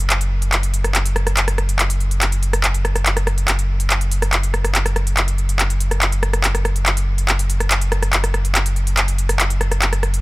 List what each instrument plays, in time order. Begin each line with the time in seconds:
Already playing: sub bass F#1
0.10 clap, closed hi-hat
0.21 closed hi-hat
0.42 closed hi-hat
0.52 clap, closed hi-hat
0.63 closed hi-hat
0.74 closed hi-hat
0.84 cross-stick, closed hi-hat
0.95 clap, closed hi-hat
1.06 closed hi-hat
1.16 cross-stick, closed hi-hat
1.27 cross-stick, closed hi-hat
1.37 clap, closed hi-hat
1.48 cross-stick, closed hi-hat
1.58 cross-stick, closed hi-hat
1.69 closed hi-hat
1.79 clap, closed hi-hat
1.90 closed hi-hat
2.00 closed hi-hat
2.11 closed hi-hat
2.22 clap, closed hi-hat
2.32 closed hi-hat
2.43 closed hi-hat
2.53 cross-stick, closed hi-hat
2.64 clap, closed hi-hat
2.74 closed hi-hat
2.85 cross-stick, closed hi-hat
2.96 cross-stick, closed hi-hat
3.06 clap, closed hi-hat
3.17 cross-stick, closed hi-hat
3.27 cross-stick, closed hi-hat
3.38 closed hi-hat
3.48 sub bass F#1, clap, closed hi-hat
3.59 closed hi-hat
3.80 closed hi-hat
3.90 clap, closed hi-hat
4.01 closed hi-hat
4.12 closed hi-hat
4.22 cross-stick, closed hi-hat
4.33 clap, closed hi-hat
4.43 closed hi-hat
4.54 cross-stick, closed hi-hat
4.65 cross-stick, closed hi-hat
4.75 clap, closed hi-hat
4.86 cross-stick, closed hi-hat
4.96 cross-stick, closed hi-hat
5.07 closed hi-hat
5.17 clap, closed hi-hat
5.28 closed hi-hat
5.38 closed hi-hat
5.49 closed hi-hat
5.59 clap, closed hi-hat
5.70 closed hi-hat
5.80 closed hi-hat
5.91 cross-stick, closed hi-hat
6.02 clap, closed hi-hat
6.12 closed hi-hat
6.23 cross-stick, closed hi-hat
6.33 cross-stick, closed hi-hat
6.44 clap, closed hi-hat
6.55 cross-stick, closed hi-hat
6.65 cross-stick, closed hi-hat
6.76 closed hi-hat
6.86 clap, closed hi-hat
6.97 closed hi-hat
7.18 closed hi-hat
7.28 clap, closed hi-hat
7.39 closed hi-hat
7.50 closed hi-hat
7.60 cross-stick, closed hi-hat
7.71 clap, closed hi-hat
7.81 closed hi-hat
7.92 cross-stick, closed hi-hat
8.03 cross-stick, closed hi-hat
8.13 clap, closed hi-hat
8.24 cross-stick, closed hi-hat
8.34 cross-stick, closed hi-hat
8.45 closed hi-hat
8.55 clap, closed hi-hat
8.66 closed hi-hat
8.76 closed hi-hat
8.87 closed hi-hat
8.97 clap, closed hi-hat
9.08 closed hi-hat
9.18 closed hi-hat
9.29 cross-stick, closed hi-hat
9.40 clap, closed hi-hat
9.50 closed hi-hat
9.61 cross-stick, closed hi-hat
9.72 cross-stick, closed hi-hat
9.82 clap, closed hi-hat
9.93 cross-stick, closed hi-hat
10.03 cross-stick, closed hi-hat
10.14 closed hi-hat